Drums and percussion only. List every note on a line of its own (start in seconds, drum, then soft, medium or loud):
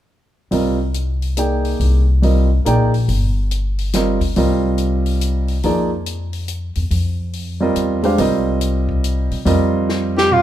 0.52 open hi-hat soft
0.94 closed hi-hat soft
1.22 open hi-hat soft
1.37 closed hi-hat soft
1.65 open hi-hat soft
1.80 open hi-hat soft
2.23 open hi-hat soft
2.66 closed hi-hat soft
2.94 open hi-hat soft
3.09 open hi-hat soft
3.51 closed hi-hat soft
3.79 open hi-hat soft
3.93 snare soft
3.93 closed hi-hat soft
4.21 kick soft
4.21 open hi-hat soft
4.36 open hi-hat soft
4.78 closed hi-hat soft
5.06 open hi-hat soft
5.21 closed hi-hat soft
5.48 open hi-hat soft
5.63 open hi-hat soft
6.06 closed hi-hat soft
6.33 open hi-hat soft
6.48 closed hi-hat soft
6.75 open hi-hat soft
6.91 open hi-hat soft
7.33 open hi-hat soft
7.76 closed hi-hat soft
8.03 open hi-hat soft
8.18 open hi-hat soft
8.61 closed hi-hat soft
8.89 kick soft
9.04 closed hi-hat soft
9.31 open hi-hat soft
9.46 open hi-hat soft
9.89 snare soft
10.18 snare soft
10.32 floor tom soft